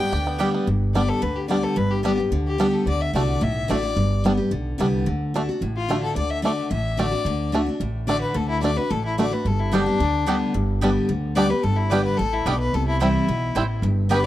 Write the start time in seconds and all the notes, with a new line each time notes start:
Already playing: D4 G4 D5 G5
0.00 B3
0.12 D2 D3 G4
0.27 B3
0.39 D3 G3 B3 G4 D5 G5
0.54 B3
0.67 G1 G2
0.94 D3 G3 B3 D4 G4 D5
1.09 A4
1.22 D2 D3 B4
1.36 G4
1.48 D3 G3 B3 D4 G4 D5
1.63 A4
1.76 G1 G2 B4
1.91 G4
2.03 D3 G3 B3 D4 G4
2.17 B3 G4
2.31 D2 D3
2.47 G4
2.58 D3 G3 B3 D4 G4
2.74 A4
2.86 D2 D3 D5
3.01 E5
3.13 C2 D3 A3 D4 F#4 D5
3.41 B1 A2 E5
3.68 A1 D3 A3 D4 F#4 D5
3.83 D4 F#4
3.96 G1 G2
4.24 D3 G3 B3 D4 G4
4.37 B3 G4
4.51 B1 D3
4.78 C2 D3 G3 B3 D4 G4
5.06 D2 D3
5.34 D3 A3 D4 F#4
5.49 D4 F#4
5.61 A1 A2
5.76 F4
5.89 D3 A3 D4 F#4
6.03 A4
6.16 D2 D3 D5
6.30 E5
6.42 D3 A3 D4 F#4 D5
6.71 A1 A2 E5
6.97 D3 A3 D4 F#4 D5
7.12 D4 F#4
7.25 D2 D3
7.52 D3 A3 D4 F#4
7.66 D4 F#4
7.80 A1 A2
8.07 D3 A3 D4 F#4 D5
8.21 B4
8.34 D2 D3 A4
8.49 E4
8.62 D3 A3 D4 F#4 D5
8.76 D4 F#4 B4
8.91 A1 A2 A4
9.05 E4
9.18 D3 A3 D4 F#4 D5
9.31 D4 F#4 B4
9.45 G1 G2 A4
9.60 E4
9.72 D3 G3 B3 D4 G4 D5 G5
9.86 B3 G4
10.00 D2 D3
10.26 D3 G3 B3 D4 G4 D5 G5
10.54 G1 G2
10.81 D3 G3 B3 D4 G4 D5 G5
11.09 D2 D3
11.35 D3 G3 B3 D4 G4 D5 G5
11.49 B3 G4 B4
11.63 G1 G2 A4
11.77 E4
11.90 D3 G3 B3 D4 G4 D5 G5
12.04 B4
12.17 A1 A2 A4
12.33 E4
12.46 B1 B2 G3 B3 D4 G4 D5 G5
12.60 B4
12.73 C2 C3 A4
12.88 E4
13.00 E3 G3 C4 E4 C5 G5
13.28 B1 B2
13.55 A1 A2 G3 C4 E4 C5 G5
13.82 G1 G2
14.09 D3 G3 B3 D4 G4 B4 D5 G5